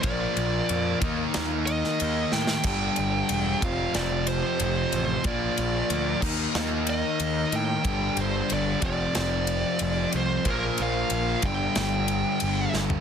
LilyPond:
<<
  \new Staff \with { instrumentName = "Lead electric guitar" } { \time 4/4 \key g \minor \tempo 4 = 92 d''4. r4 ees''4 g''8~ | g''4. f''8 d''8 c''4. | d''4. r4 ees''4 g''8~ | g''8 c''8 d''8 d''2 c''8 |
bes'8 f''4 g''2 r8 | }
  \new Staff \with { instrumentName = "Tonewheel organ" } { \time 4/4 \key g \minor <bes f' c''>4. <ees' bes' f''>2~ <ees' bes' f''>8 | <g d' a'>4. <f c' g'>2~ <f c' g'>8 | <bes f' c''>4. <ees' bes' f''>2~ <ees' bes' f''>8 | <g d' a'>4. <f c' g'>2~ <f c' g'>8 |
<bes f' c''>4. <g d' a'>2~ <g d' a'>8 | }
  \new Staff \with { instrumentName = "Overdriven electric guitar" } { \clef bass \time 4/4 \key g \minor <bes, f bes>4. <ees bes ees'>2~ <ees bes ees'>8 | <g, d g>4. <f, c f>2~ <f, c f>8 | <bes, f bes>4. <ees bes ees'>2~ <ees bes ees'>8 | <g, d g>4. <f, c f>2~ <f, c f>8 |
<bes, f bes>4. <g, d g>2~ <g, d g>8 | }
  \new Staff \with { instrumentName = "Overdriven electric guitar" } { \clef bass \time 4/4 \key g \minor <bes, f bes>4. <ees bes ees'>2~ <ees bes ees'>8 | <g, d g>4. <f, c f>2~ <f, c f>8 | <bes, f bes>4. <ees bes ees'>2~ <ees bes ees'>8 | <g, d g>4. <f, c f>2~ <f, c f>8 |
<bes, f bes>4. <g, d g>2~ <g, d g>8 | }
  \new Staff \with { instrumentName = "Picked electric bass" } { \clef bass \time 4/4 \key g \minor bes,,8 bes,,8 f,8 ees,8 ees,4 ees,8 a,8 | g,,8 g,,8 e,,8 f,,8 f,,4 f,,8 a,,8 | bes,,8 bes,,8 d,8 ees,8 ees,4 ees,8 a,8 | g,,8 g,,8 g,,8 f,,8 f,,4 f,,8 c,8 |
bes,,8 bes,,8 bes,,8 g,,8 g,,4 g,,8 g,,8 | }
  \new DrumStaff \with { instrumentName = "Drums" } \drummode { \time 4/4 <bd cymr>8 cymr8 cymr8 <bd cymr>8 <cymr sn>8 cymr16 sn16 cymr8 sn16 sn16 | <cymc bd>8 cymr8 cymr8 <bd cymr>8 <cymr sn>8 cymr8 cymr8 cymr8 | <bd cymr>8 cymr8 cymr8 <cymc bd>8 sn8 cymr8 cymr8 cymr8 | <bd cymr>8 cymr8 cymr8 <bd cymr>8 <cymr sn>8 cymr8 cymr8 cymr8 |
<bd cymr>8 cymr8 cymr8 <bd cymr>8 <cymr sn>8 cymr8 cymr8 sn16 tomfh16 | }
>>